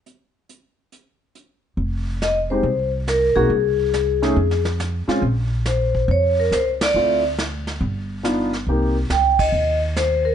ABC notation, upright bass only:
X:1
M:4/4
L:1/8
Q:"Swing" 1/4=139
K:Fm
V:1 name="Upright bass" clef=bass
z8 | F,,,4 C,,3 =B,,, | C,,4 F,,3 z | B,,,4 F,,2 D,,2 |
=D,,4 G,,,4 | C,,2 D,,2 E,,4 |]